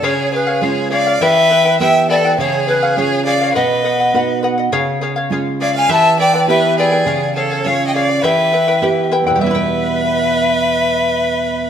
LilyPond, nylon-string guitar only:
\new Staff \with { instrumentName = "Nylon-string guitar" } { \time 2/4 \key e \dorian \tempo 4 = 103 cis4 <gis cis' eis'>4 | e4 <b e' g'>4 | cis4 <cis' eis' gis'>4 | b,4 <b dis' fis'>4 |
cis4 <gis cis' eis'>4 | e4 <b e' g'>4 | cis4 <cis' eis' gis'>4 | e4 <b e' g'>4 |
<e, b, g b e' b'>2~ | <e, b, g b e' b'>2 | }